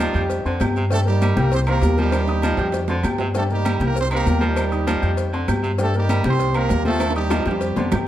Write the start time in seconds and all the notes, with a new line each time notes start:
Already playing: G3 D#4 G4
0.00 F3, high conga, low timbale, low agogo, claves, maracas
0.14 F2 G4 G5 G6, cowbell, high conga, maracas
0.30 cowbell, high conga, low agogo, maracas
0.45 F2 D3 C4 C5 C6, high conga, maracas
0.60 G2 G4 G5 G6, cowbell, high conga, low timbale, low agogo, claves, maracas
0.76 C3, high conga, maracas
0.91 G3 A3 D4 G4 A4 G5, cowbell, high conga, maracas
1.05 G3 A#3 D#4 G4 A#4 A#5, high conga, maracas
1.21 G3, cowbell, high conga, low timbale, low agogo, claves, maracas
1.36 C2 A#3 G4 A#4 G5 G6, cowbell, high conga, low agogo, maracas
1.52 C4 G4 C5, cowbell, high conga, maracas
1.67 D#3 A#3 C4 G4 A#4 C5 C6, cowbell, high conga, low agogo, claves, maracas
1.82 D#2 G3 G4 G5, cowbell, high conga, low timbale, low agogo, maracas
1.97 F3 G3 A#3 D#4 G4 A#4 A#5, high conga, maracas
2.12 cowbell, high conga, high timbale, low agogo, claves, maracas
2.28 D#4 D#5 D#6, high conga, high timbale, low agogo, maracas
2.42 F3, cowbell, high conga, low agogo, claves, maracas
2.57 F2 G4 G5 G6, cowbell, high conga, low timbale, maracas
2.72 cowbell, high conga, low timbale, low agogo, maracas
2.88 D3 C4 C5 C6, high conga, low timbale, maracas
3.03 G2 G4 G5 G6, cowbell, high conga, low timbale, low agogo, claves, maracas
3.18 C3, high conga, low timbale, maracas
3.35 G3 A3 D4 G4 A4 G5, cowbell, high conga, maracas
3.50 G3 A#3 D#4 G4 A#4 A#5, high conga, maracas
3.65 G3, cowbell, high conga, low timbale, low agogo, claves, maracas
3.80 C2 G4 G5 G6, cowbell, high conga, low agogo, maracas
3.84 A#3 A#4
3.96 G4, cowbell, high conga, maracas
4.00 C4 C5
4.10 D#3 C4 G4 C5 C6, cowbell, high conga, low agogo, claves, maracas
4.15 A#3 A#4
4.26 D#2 G3 G4 G5, cowbell, high conga, low timbale, low agogo, maracas
4.41 F3 A#3 A#4 A#5, high conga, maracas
4.45 G3 D#4 G4
4.56 cowbell, high conga, low agogo, claves, maracas
4.72 D#4 D#5 D#6, high conga, low agogo, maracas
4.87 F3, cowbell, high conga, low timbale, low agogo, claves, maracas
5.02 F2 G4 G5 G6, cowbell, high conga, maracas
5.17 cowbell, high conga, low agogo, maracas
5.33 D3 C4 C5 C6, high conga, maracas
5.48 G2 G4 G5 G6, cowbell, high conga, low timbale, low agogo, claves, maracas
5.63 C3, high conga, maracas
5.78 G3 A3 D4 G4 A4 G5, cowbell, high conga, maracas
5.94 G3 A#3 D#4 G4 A#4 A#5, high conga, maracas
6.09 G3, cowbell, high conga, low timbale, low agogo, claves, maracas
6.24 C2 C4 G4 C5 G5 G6, cowbell, high conga, low agogo, maracas
6.39 cowbell, high conga, maracas
6.54 D#3 A#3 C4 G4 A#4 C5 C6, cowbell, high conga, low agogo, claves, maracas
6.69 D#2 G3 G4 G5, cowbell, high conga, low timbale, low agogo, maracas
6.85 F3 A3 A#3 F4 A4 C5 G5, high conga, maracas
7.00 cowbell, high conga, high timbale, low agogo, claves, maracas
7.10 high timbale
7.16 G3 D#4 G4 D#5 D#6, high conga, low agogo, maracas
7.30 F3, cowbell, high bongo, high conga, high timbale, low agogo, claves, maracas
7.40 low timbale
7.46 F2 G3 C4 G4 G5 G6, cowbell, high bongo, high conga, maracas
7.51 high timbale
7.61 cowbell, high conga, low agogo, maracas
7.76 F2 D3 C4 C5 C6, low bongo, high conga, maracas
7.92 G2 G4 G5 G6, cowbell, low bongo, low conga, low timbale, low agogo, claves, maracas